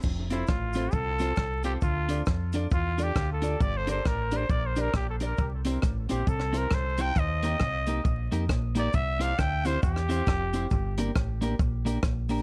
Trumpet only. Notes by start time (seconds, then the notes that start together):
0.31 E4
0.49 F4
0.93 A4
1.65 G4
1.83 F4
2.73 F4
3.03 G4
3.33 A4
3.61 D5
3.77 C5
3.91 C5
4.07 A#4
4.36 C5
4.51 D5
4.66 C5
4.81 A#4
4.96 G4
5.10 A4
5.26 A#4
6.10 G4
6.29 A4
6.57 A#4
6.74 C5
7.01 G5
7.19 D#5
8.79 D5
8.95 E5
9.22 F5
9.39 G5
9.66 C5
9.83 G4